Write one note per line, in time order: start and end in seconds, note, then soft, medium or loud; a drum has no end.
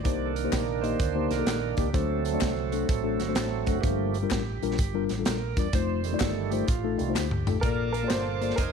0.00 1.90 D#3 medium
0.00 1.90 A#3 medium
0.00 0.29 D5 loud
0.05 0.46 C2 loud
0.05 0.80 C3 medium
0.05 0.30 A#3 medium
0.05 1.91 D4 medium
0.05 0.31 D#4 medium
0.05 0.31 G4 medium
0.05 0.31 C5 medium
0.05 kick loud
0.05 closed hi-hat medium
0.05 tambourine medium
0.26 0.36 A4 medium
0.36 0.85 A#4 medium
0.36 closed hi-hat medium
0.36 tambourine medium
0.44 0.62 A#3 medium
0.44 0.62 D#4 medium
0.44 0.62 G4 medium
0.44 0.63 C5 medium
0.52 0.93 A#1 medium
0.52 kick medium
0.52 snare medium
0.52 clap loud
0.52 closed hi-hat medium
0.52 tambourine loud
0.82 0.96 A#3 medium
0.82 0.97 D#4 medium
0.82 0.97 G4 medium
0.82 1.31 C5 loud
0.82 0.97 D#5 medium
0.82 closed hi-hat medium
0.82 tambourine medium
0.99 1.26 D2 medium
0.99 kick loud
0.99 closed hi-hat medium
0.99 tambourine medium
1.15 1.32 A#3 medium
1.15 1.32 D#4 medium
1.15 1.32 G4 medium
1.15 1.32 C5 medium
1.31 1.45 C2 medium
1.31 1.75 A#4 loud
1.31 snare soft
1.31 closed hi-hat medium
1.31 tambourine medium
1.37 1.56 A#3 medium
1.37 1.56 D#4 medium
1.37 1.57 G4 medium
1.37 1.57 A4 medium
1.46 1.73 A#1 medium
1.46 snare loud
1.46 clap medium
1.46 closed hi-hat loud
1.46 tambourine loud
1.77 1.92 C#2 medium
1.77 1.86 A#3 medium
1.77 1.86 D#4 medium
1.77 1.87 G4 medium
1.77 1.95 G4 medium
1.77 1.87 A#4 medium
1.77 kick loud
1.77 closed hi-hat medium
1.77 tambourine medium
1.93 2.35 D2 loud
1.93 2.69 D3 medium
1.93 3.79 F#3 medium
1.93 2.19 A3 medium
1.93 3.79 A3 soft
1.93 3.80 C4 medium
1.93 2.20 D4 medium
1.93 2.20 F#4 medium
1.93 2.24 A4 medium
1.93 2.20 C5 medium
1.93 kick loud
1.93 closed hi-hat medium
1.93 tambourine medium
2.25 2.74 A4 medium
2.25 closed hi-hat medium
2.25 tambourine medium
2.33 2.51 A3 medium
2.33 2.52 D4 medium
2.33 2.52 F#4 medium
2.33 2.52 D5 medium
2.41 2.82 C2 loud
2.41 kick medium
2.41 snare loud
2.41 clap loud
2.41 closed hi-hat medium
2.41 tambourine medium
2.72 2.86 A3 medium
2.72 2.86 D4 medium
2.72 2.87 F#4 medium
2.72 2.86 F#4 medium
2.72 2.86 A4 medium
2.72 closed hi-hat medium
2.72 tambourine medium
2.89 3.16 A1 medium
2.89 3.21 A4 medium
2.89 kick loud
2.89 closed hi-hat loud
2.89 tambourine medium
3.03 3.20 A3 medium
3.03 3.20 D4 medium
3.03 3.21 F#4 medium
3.03 3.21 A4 medium
3.20 3.34 G1 medium
3.20 3.28 F#4 medium
3.20 snare soft
3.20 closed hi-hat medium
3.20 tambourine medium
3.28 3.46 A3 medium
3.28 3.46 D4 medium
3.28 3.47 F#4 medium
3.28 3.69 A4 medium
3.28 3.47 C5 medium
3.35 3.63 A1 medium
3.35 snare loud
3.35 clap medium
3.35 closed hi-hat loud
3.35 tambourine loud
3.66 3.81 F#1 medium
3.66 3.76 A3 medium
3.66 3.76 D4 medium
3.66 3.71 F#4 medium
3.66 3.76 F#4 medium
3.66 3.77 A4 medium
3.66 kick medium
3.66 closed hi-hat medium
3.66 tambourine medium
3.72 3.82 F#4 medium
3.81 4.24 G1 loud
3.81 4.58 G2 medium
3.81 4.18 F3 medium
3.81 4.10 G3 medium
3.81 4.18 A3 medium
3.81 4.18 A#3 medium
3.81 4.09 D4 medium
3.81 4.10 F4 medium
3.81 5.04 G4 medium
3.81 kick loud
3.81 closed hi-hat medium
3.81 tambourine medium
3.85 4.10 A#4 medium
4.14 closed hi-hat medium
4.14 tambourine medium
4.22 4.41 G3 medium
4.22 4.41 D4 medium
4.22 4.41 F4 medium
4.22 4.41 A#4 medium
4.30 4.58 A1 medium
4.30 kick medium
4.30 snare loud
4.30 clap medium
4.30 closed hi-hat medium
4.30 tambourine medium
4.62 4.76 A#1 loud
4.62 4.76 G3 medium
4.62 4.76 D4 medium
4.62 4.76 F4 medium
4.62 4.76 A#4 medium
4.62 closed hi-hat medium
4.62 tambourine medium
4.71 snare soft
4.78 5.05 G1 medium
4.78 kick loud
4.78 closed hi-hat loud
4.78 tambourine medium
4.94 5.11 G3 medium
4.94 5.11 D4 medium
4.94 5.11 F4 medium
4.94 5.11 A#4 loud
5.09 5.24 A1 medium
5.09 snare soft
5.09 closed hi-hat medium
5.09 tambourine medium
5.18 5.36 G3 medium
5.18 5.36 D4 medium
5.18 5.37 F4 medium
5.18 5.37 A4 medium
5.25 5.53 A#1 medium
5.25 5.58 A#4 medium
5.25 snare loud
5.25 clap loud
5.25 closed hi-hat loud
5.25 tambourine loud
5.57 5.71 E1 medium
5.57 5.66 G3 medium
5.57 5.66 D4 medium
5.57 5.66 F4 medium
5.57 5.66 A#4 medium
5.57 5.75 D5 loud
5.57 kick loud
5.57 closed hi-hat medium
5.57 tambourine medium
5.73 6.14 F1 loud
5.73 5.99 A3 medium
5.73 6.00 D#4 medium
5.73 6.00 F4 medium
5.73 6.15 C5 loud
5.73 6.00 C5 medium
5.73 kick loud
5.73 closed hi-hat medium
5.73 tambourine medium
6.03 6.64 D#3 medium
6.03 6.65 G3 soft
6.03 6.65 A3 medium
6.03 closed hi-hat medium
6.03 tambourine medium
6.12 6.31 A3 medium
6.12 6.31 D#4 medium
6.12 6.31 F4 medium
6.12 6.20 C5 medium
6.12 6.31 D5 medium
6.19 6.61 G1 loud
6.19 6.52 A4 medium
6.19 kick medium
6.19 snare loud
6.19 clap medium
6.19 closed hi-hat medium
6.19 tambourine loud
6.50 6.65 A3 medium
6.50 6.65 D#4 medium
6.50 6.65 F4 medium
6.50 6.68 G4 medium
6.50 6.66 C5 medium
6.50 closed hi-hat medium
6.50 tambourine medium
6.67 6.95 A1 medium
6.67 7.16 F4 medium
6.67 kick loud
6.67 closed hi-hat medium
6.67 tambourine medium
6.83 7.00 A3 medium
6.83 7.00 D#4 medium
6.83 7.00 F4 medium
6.83 7.01 A4 medium
6.98 7.14 C2 loud
6.98 7.13 D#3 soft
6.98 7.13 G3 soft
6.98 7.14 A3 medium
6.98 closed hi-hat medium
6.98 tambourine medium
7.08 7.26 A3 medium
7.08 7.26 D#4 medium
7.08 7.26 F4 medium
7.08 7.27 C5 medium
7.14 7.43 D2 medium
7.14 7.59 G4 medium
7.14 snare medium
7.14 clap loud
7.14 tambourine medium
7.31 mid tom medium
7.47 7.62 A1 medium
7.47 7.56 A3 medium
7.47 7.56 D#4 medium
7.47 7.56 F4 medium
7.47 7.56 A4 medium
7.47 floor tom loud
7.47 tambourine medium
7.60 8.04 A#1 medium
7.60 8.56 A#3 medium
7.60 8.54 D4 medium
7.60 7.91 A#4 loud
7.60 8.72 F5 medium
7.60 8.56 A5 medium
7.60 8.56 D6 medium
7.60 kick loud
7.60 closed hi-hat medium
7.60 tambourine medium
7.64 8.38 A#2 medium
7.64 7.89 A#3 medium
7.64 8.10 F4 medium
7.64 7.89 F4 medium
7.64 7.89 A4 medium
7.64 8.08 A#4 medium
7.64 7.90 D5 medium
7.93 8.10 A#4 medium
7.93 closed hi-hat medium
7.93 tambourine soft
8.03 8.21 A#3 medium
8.03 8.21 F4 medium
8.03 8.21 A4 medium
8.03 8.22 D5 medium
8.08 8.51 G1 loud
8.08 8.55 F4 medium
8.08 8.55 A4 medium
8.08 8.58 C5 medium
8.08 snare loud
8.08 clap medium
8.08 closed hi-hat medium
8.08 tambourine medium
8.13 8.59 C5 loud
8.41 8.58 A#3 medium
8.41 8.58 F4 medium
8.41 8.58 A4 medium
8.41 8.59 D5 medium
8.41 closed hi-hat medium
8.41 tambourine soft
8.50 snare soft
8.56 8.72 F1 medium
8.56 8.72 D#4 medium
8.56 8.72 A#4 loud
8.56 8.72 C5 medium
8.56 8.72 G#5 medium
8.56 8.72 D#6 medium
8.56 kick loud
8.56 closed hi-hat loud
8.56 tambourine medium
8.61 8.72 A#4 medium